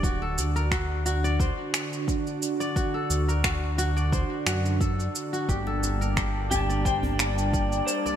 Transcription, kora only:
X:1
M:4/4
L:1/16
Q:"Swing 16ths" 1/4=88
K:Dphr
V:1 name="Kora"
^F A z B F z F d c z6 d | ^F A z B F z F d c z F z A z2 F | G A z B G z G d c z6 d |]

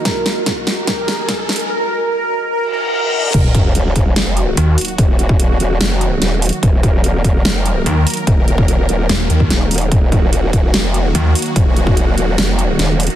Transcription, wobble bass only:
X:1
M:4/4
L:1/8
Q:1/4=146
K:Ebm
V:1 name="Wobble bass" clef=bass
z8 | z8 | E,,,3 E,,, F,,,2 z2 | E,,,3 E,,, F,,,2 E,,, z |
E,,,3 E,,, F,,,2 z2 | E,,,3 E,,, z2 E,,,2 | E,,,3 E,,, F,,,2 z2 | E,,,3 E,,, F,,,2 E,,, z |]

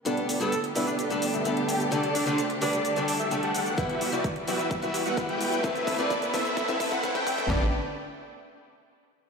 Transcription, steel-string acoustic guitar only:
X:1
M:4/4
L:1/16
Q:1/4=129
K:G
V:1 name="Steel-string acoustic guitar"
[G,,G,B,DA]3 [G,,G,B,DA] z2 [G,,G,B,DB] z2 [G,,G,B,DA]3 [G,,G,B,DA]4 | [D,G,A,DA]3 [D,G,A,DA] z2 [D,G,A,DB] z2 [D,G,A,DA]3 [D,G,A,DA]4 | [G,EBf]3 [G,EFB] z2 [G,EFd] z2 [G,EFB]3 [G,EB]4 | [A,,A,CEB]3 [A,,A,CEB] z2 [A,,A,CEc] z2 [A,,A,CEB]3 [A,,A,CEB]4 |
[A,DGB]2 z12 z2 |]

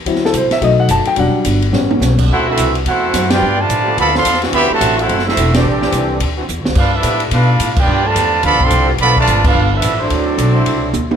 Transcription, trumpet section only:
X:1
M:4/4
L:1/8
Q:"Swing" 1/4=215
K:Ador
V:1 name="Trumpet section"
z8 | z8 | [K:Glyd] [EA=cf] [=CFAe]2 z [EAcf]3 [=FBdg]- | [=FBdg] [FBda]3 [Ad=fb] [Adf=c']2 z |
[G=ceb] [Fcea]2 [EAcf]2 [=CFAe]2 [CGAd]- | [=CGAd]4- [CGAd] z3 | [DAB=f] [DABe]2 z [DABf]3 [=FBdg]- | [=FBdg] [FBda]3 [Ad=fb] [Adf=c']2 z |
[Ad=fb] [=FBda]2 [DABf]2 [DABe]2 [=C^FAd]- | [=CFAd]6- [CFAd] z |]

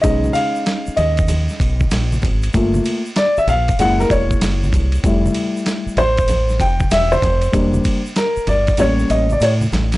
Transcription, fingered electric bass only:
X:1
M:4/4
L:1/8
Q:"Swing 16ths" 1/4=96
K:F
V:1 name="Fingered electric bass" clef=bass
=B,,, z2 ^D,,2 B,,, _B,,, ^G,,, | G,,, z2 B,,, ^F,,, E,,, F,,, C,, | F,,, z2 A,,,2 F,,, E,,, F,,, | E,,, z2 G,,, A,,, A,,, A,, A,,, |]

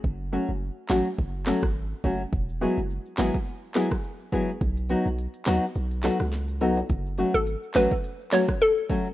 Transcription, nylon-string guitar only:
X:1
M:4/4
L:1/16
Q:"Swing 16ths" 1/4=105
K:F#dor
V:1 name="Nylon-string guitar"
z2 [F,A,CF] z3 [F,A,CF] z3 [F,A,CF] z3 [F,A,CF] z | z2 [F,B,EG] z3 [F,B,EG] z3 [F,B,EG] z3 [F,B,EG] z | z2 [F,B,DF] z3 [F,B,DF] z3 [F,B,DF] z3 [F,B,DF] z | z2 [F,A,CF] z3 [F,A,CF] z3 [F,A,CF] z3 [F,A,CF] z |]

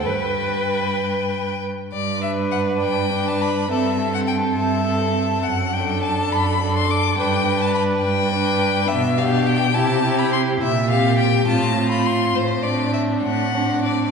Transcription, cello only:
X:1
M:6/8
L:1/8
Q:3/8=69
K:G
V:1 name="Cello" clef=bass
G,,4- G,, z | G,,3 G,,3 | G,,3 G,,3 | F,,3 F,,3 |
G,,3 G,,3 | [K:C] B,,3 C,3 | _B,,3 A,,3 | A,,3 A,,3 |]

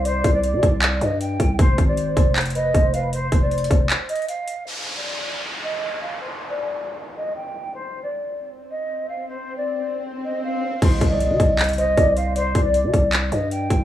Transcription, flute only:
X:1
M:4/4
L:1/16
Q:1/4=156
K:Cm
V:1 name="Flute"
c3 d4- d z2 e2 g4 | c3 d4- d z2 e4 f2 | c3 d4- d z2 e2 f4 | c3 d4- d z2 e4 f2 |
c3 d4- d z2 e2 g4 | c3 d4- d z2 e4 f2 | c3 d4- d z2 e2 f4 | c3 d4- d z2 e4 f2 |
c3 d4- d z2 e2 g4 |]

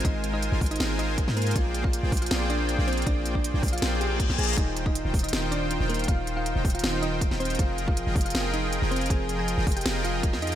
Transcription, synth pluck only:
X:1
M:4/4
L:1/16
Q:1/4=159
K:Eb
V:1 name="Synth pluck"
[Ee]2 z [Ee]3 z [Ee]2 z [Ee]3 z [B,B] z | [Ff]2 z [Ff]3 z [Ff]2 z [Dd]3 z [Cc] z | [Dd]2 z [Dd]3 z [Ff]2 z [Gg]3 z [Aa] z | [Ee]2 z [Ee]3 z [Ee]2 z [Dd]3 z [B,B] z |
[Ff]2 z [Ff]3 z [Ff]2 z [Ee]3 z [Cc] z | [Ff]2 z [Ff]3 z [Ff]2 z [Ee]3 z [Cc] z | [Aa]2 z [Aa]3 z [Gg]2 z [Ff]3 z [Ee] z |]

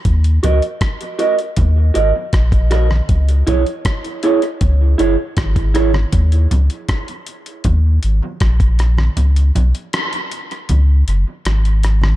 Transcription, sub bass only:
X:1
M:4/4
L:1/16
Q:1/4=79
K:Ebphr
V:1 name="Sub bass" clef=bass
E,,2 D,, z4 z E,,2 A,,, z B,,,4 | D,,2 C,, z4 z D,,2 G,,, z A,,,4 | E,,2 D,, z4 z E,,2 A,,, z B,,,4 | D,,2 C,, z4 z D,,2 G,,, z A,,,4 |]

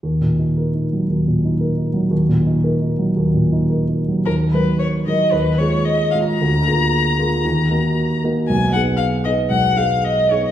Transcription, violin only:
X:1
M:4/4
L:1/16
Q:1/4=114
K:Ebm
V:1 name="Violin"
z16 | z16 | B2 c2 d2 e2 c2 d2 e2 f b- | b12- b2 z2 |
a2 g2 f2 e2 g2 f2 e2 d e |]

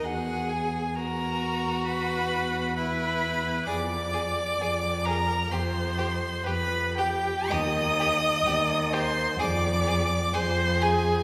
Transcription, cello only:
X:1
M:4/4
L:1/8
Q:1/4=65
K:Elyd
V:1 name="Cello" clef=bass
E,,8 | [K:Fdor] F,,2 F,,2 F,,2 F,,2 | E,,2 E,,2 F,,2 F,,2 |]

